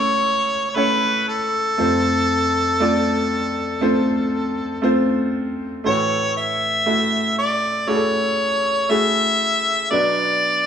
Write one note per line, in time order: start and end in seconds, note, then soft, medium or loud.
0.00 1.24 C#2 medium
0.00 1.24 C#3 medium
0.00 0.75 A3 medium
0.00 0.71 C#4 medium
0.00 0.77 E4 medium
0.00 0.70 C#5 loud
0.00 0.72 C#5 medium
0.00 1.80 E5 medium
0.70 0.77 C#5 medium
0.75 1.72 A3 medium
0.75 1.73 C#4 medium
0.75 1.73 E4 medium
0.75 1.27 B4 medium
0.75 1.73 C#5 medium
1.28 4.80 A4 medium
1.78 5.81 F2 medium
1.78 5.81 C3 medium
1.78 2.74 A3 medium
1.78 2.75 C4 medium
1.78 2.75 F4 medium
1.78 2.75 C5 medium
2.80 3.76 A3 medium
2.80 3.77 C4 medium
2.80 3.77 F4 medium
2.80 3.77 D5 medium
3.81 4.78 A3 medium
3.81 4.78 C4 medium
3.81 4.78 F4 medium
3.81 4.78 C5 medium
4.82 5.79 A3 medium
4.82 5.79 C4 medium
4.82 5.80 F4 medium
4.82 5.80 C5 loud
5.84 9.88 A2 medium
5.84 9.88 E3 medium
5.84 6.81 A3 medium
5.84 6.81 E4 medium
5.84 6.82 F#4 medium
5.84 6.33 C#5 medium
5.84 6.82 C#5 medium
6.37 7.34 E5 loud
6.86 7.83 A3 medium
6.86 7.83 E4 medium
6.86 7.83 F#4 medium
6.86 7.84 E5 medium
7.38 7.90 D5 medium
7.87 8.84 A3 medium
7.87 8.85 E4 medium
7.87 8.84 F#4 medium
7.87 7.95 G#4 medium
7.87 8.92 C#5 loud
7.95 8.88 A4 medium
8.89 9.86 A3 medium
8.89 9.86 E4 medium
8.89 9.87 F#4 medium
8.89 9.87 G#4 medium
8.89 9.90 E5 loud
9.91 10.66 B2 medium
9.91 10.66 F#3 medium
9.91 10.66 B3 medium
9.91 10.66 D4 medium
9.91 10.66 F#4 medium
9.91 10.66 D5 medium